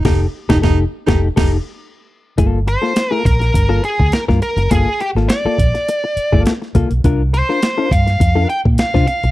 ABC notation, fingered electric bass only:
X:1
M:4/4
L:1/16
Q:1/4=103
K:Gm
V:1 name="Fingered electric bass" clef=bass
F,,,2 z F,,, F,,,2 z F,,,2 F,,,2 z4 z | G,,,3 z3 B,,,2 G,,,2 z D,, z G,, z _G,,, | G,,, z2 _A,,, z2 B,,, z4 G,,, z2 C,, =B,,, | C,,3 z3 G,,2 F,,2 z B,, z C, z =B,,, |]